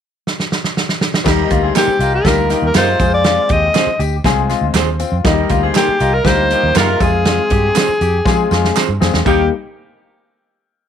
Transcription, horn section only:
0, 0, Header, 1, 2, 480
1, 0, Start_track
1, 0, Key_signature, -3, "major"
1, 0, Tempo, 500000
1, 1209, Time_signature, 4, 2, 24, 8
1, 10450, End_track
2, 0, Start_track
2, 0, Title_t, "Horn section"
2, 0, Program_c, 0, 61
2, 1207, Note_on_c, 0, 70, 102
2, 1208, Note_on_c, 0, 63, 87
2, 1210, Note_on_c, 0, 55, 87
2, 1545, Note_off_c, 0, 63, 0
2, 1545, Note_off_c, 0, 70, 0
2, 1546, Note_off_c, 0, 55, 0
2, 1560, Note_on_c, 0, 68, 73
2, 1561, Note_on_c, 0, 60, 70
2, 1562, Note_on_c, 0, 72, 71
2, 1659, Note_off_c, 0, 60, 0
2, 1659, Note_off_c, 0, 68, 0
2, 1660, Note_off_c, 0, 72, 0
2, 1683, Note_on_c, 0, 68, 76
2, 1683, Note_on_c, 0, 72, 86
2, 1685, Note_on_c, 0, 60, 75
2, 1876, Note_off_c, 0, 68, 0
2, 1876, Note_off_c, 0, 72, 0
2, 1877, Note_off_c, 0, 60, 0
2, 1914, Note_on_c, 0, 55, 77
2, 1914, Note_on_c, 0, 63, 83
2, 1917, Note_on_c, 0, 70, 81
2, 2110, Note_off_c, 0, 55, 0
2, 2110, Note_off_c, 0, 63, 0
2, 2111, Note_off_c, 0, 70, 0
2, 2156, Note_on_c, 0, 63, 80
2, 2157, Note_on_c, 0, 55, 88
2, 2157, Note_on_c, 0, 70, 93
2, 2351, Note_off_c, 0, 55, 0
2, 2351, Note_off_c, 0, 63, 0
2, 2351, Note_off_c, 0, 70, 0
2, 2389, Note_on_c, 0, 51, 75
2, 2389, Note_on_c, 0, 67, 84
2, 2395, Note_on_c, 0, 58, 76
2, 2586, Note_off_c, 0, 51, 0
2, 2586, Note_off_c, 0, 67, 0
2, 2590, Note_off_c, 0, 58, 0
2, 2637, Note_on_c, 0, 65, 114
2, 2638, Note_on_c, 0, 48, 89
2, 2638, Note_on_c, 0, 56, 107
2, 2977, Note_off_c, 0, 48, 0
2, 2977, Note_off_c, 0, 65, 0
2, 2978, Note_off_c, 0, 56, 0
2, 5030, Note_on_c, 0, 63, 96
2, 5031, Note_on_c, 0, 55, 83
2, 5034, Note_on_c, 0, 70, 96
2, 5372, Note_off_c, 0, 63, 0
2, 5373, Note_off_c, 0, 55, 0
2, 5374, Note_off_c, 0, 70, 0
2, 5398, Note_on_c, 0, 60, 79
2, 5398, Note_on_c, 0, 72, 80
2, 5400, Note_on_c, 0, 68, 74
2, 5494, Note_off_c, 0, 60, 0
2, 5494, Note_off_c, 0, 72, 0
2, 5495, Note_off_c, 0, 68, 0
2, 5516, Note_on_c, 0, 68, 82
2, 5518, Note_on_c, 0, 72, 86
2, 5519, Note_on_c, 0, 60, 76
2, 5709, Note_off_c, 0, 68, 0
2, 5710, Note_off_c, 0, 60, 0
2, 5710, Note_off_c, 0, 72, 0
2, 5756, Note_on_c, 0, 70, 90
2, 5757, Note_on_c, 0, 63, 78
2, 5759, Note_on_c, 0, 55, 71
2, 5949, Note_off_c, 0, 70, 0
2, 5950, Note_off_c, 0, 63, 0
2, 5951, Note_off_c, 0, 55, 0
2, 6009, Note_on_c, 0, 63, 78
2, 6012, Note_on_c, 0, 55, 79
2, 6013, Note_on_c, 0, 70, 98
2, 6197, Note_off_c, 0, 63, 0
2, 6199, Note_off_c, 0, 55, 0
2, 6199, Note_off_c, 0, 70, 0
2, 6251, Note_on_c, 0, 58, 78
2, 6254, Note_on_c, 0, 51, 80
2, 6254, Note_on_c, 0, 67, 93
2, 6439, Note_off_c, 0, 58, 0
2, 6440, Note_off_c, 0, 51, 0
2, 6440, Note_off_c, 0, 67, 0
2, 6483, Note_on_c, 0, 56, 101
2, 6484, Note_on_c, 0, 48, 92
2, 6488, Note_on_c, 0, 65, 115
2, 6821, Note_off_c, 0, 48, 0
2, 6821, Note_off_c, 0, 56, 0
2, 6823, Note_off_c, 0, 65, 0
2, 8896, Note_on_c, 0, 51, 73
2, 8897, Note_on_c, 0, 58, 66
2, 8898, Note_on_c, 0, 67, 91
2, 9061, Note_off_c, 0, 51, 0
2, 9061, Note_off_c, 0, 58, 0
2, 9062, Note_off_c, 0, 67, 0
2, 10450, End_track
0, 0, End_of_file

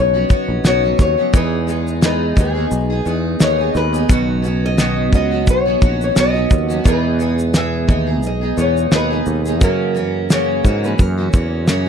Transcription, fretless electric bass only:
0, 0, Header, 1, 3, 480
1, 0, Start_track
1, 0, Key_signature, 5, "major"
1, 0, Tempo, 689655
1, 929, Time_signature, 4, 2, 24, 8
1, 8275, End_track
2, 0, Start_track
2, 0, Title_t, "Fretless electric bass"
2, 0, Program_c, 0, 35
2, 0, Note_on_c, 0, 35, 92
2, 165, Note_off_c, 0, 35, 0
2, 338, Note_on_c, 0, 34, 78
2, 428, Note_off_c, 0, 34, 0
2, 447, Note_on_c, 0, 35, 78
2, 645, Note_off_c, 0, 35, 0
2, 688, Note_on_c, 0, 39, 90
2, 797, Note_off_c, 0, 39, 0
2, 930, Note_on_c, 0, 40, 103
2, 1622, Note_off_c, 0, 40, 0
2, 1648, Note_on_c, 0, 39, 83
2, 1846, Note_off_c, 0, 39, 0
2, 1890, Note_on_c, 0, 35, 90
2, 2087, Note_off_c, 0, 35, 0
2, 2129, Note_on_c, 0, 40, 88
2, 2326, Note_off_c, 0, 40, 0
2, 2372, Note_on_c, 0, 39, 83
2, 2568, Note_off_c, 0, 39, 0
2, 2610, Note_on_c, 0, 39, 95
2, 2807, Note_off_c, 0, 39, 0
2, 2849, Note_on_c, 0, 35, 103
2, 3568, Note_off_c, 0, 35, 0
2, 3568, Note_on_c, 0, 37, 91
2, 3810, Note_off_c, 0, 37, 0
2, 3810, Note_on_c, 0, 35, 90
2, 4007, Note_off_c, 0, 35, 0
2, 4049, Note_on_c, 0, 34, 77
2, 4247, Note_off_c, 0, 34, 0
2, 4292, Note_on_c, 0, 35, 84
2, 4488, Note_off_c, 0, 35, 0
2, 4530, Note_on_c, 0, 39, 81
2, 4727, Note_off_c, 0, 39, 0
2, 4770, Note_on_c, 0, 40, 111
2, 5462, Note_off_c, 0, 40, 0
2, 5488, Note_on_c, 0, 39, 96
2, 5729, Note_off_c, 0, 39, 0
2, 5729, Note_on_c, 0, 35, 83
2, 5926, Note_off_c, 0, 35, 0
2, 5968, Note_on_c, 0, 40, 92
2, 6165, Note_off_c, 0, 40, 0
2, 6206, Note_on_c, 0, 39, 92
2, 6404, Note_off_c, 0, 39, 0
2, 6449, Note_on_c, 0, 39, 80
2, 6692, Note_off_c, 0, 39, 0
2, 6692, Note_on_c, 0, 42, 105
2, 7382, Note_off_c, 0, 42, 0
2, 7408, Note_on_c, 0, 44, 96
2, 7605, Note_off_c, 0, 44, 0
2, 7650, Note_on_c, 0, 42, 91
2, 7846, Note_off_c, 0, 42, 0
2, 7890, Note_on_c, 0, 40, 96
2, 8129, Note_off_c, 0, 40, 0
2, 8129, Note_on_c, 0, 42, 85
2, 8275, Note_off_c, 0, 42, 0
2, 8275, End_track
3, 0, Start_track
3, 0, Title_t, "Muted fretless electric bass strokes"
3, 209, Note_on_c, 9, 29, 45
3, 279, Note_off_c, 9, 29, 0
3, 8275, End_track
0, 0, End_of_file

